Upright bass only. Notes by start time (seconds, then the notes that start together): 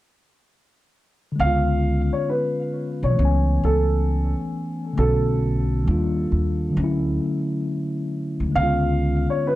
1.40 C#2
3.03 B1
3.19 C#2
3.63 C#2
4.98 B1
5.87 D#2
6.32 D#2
6.77 D2
8.40 D2
8.56 C#2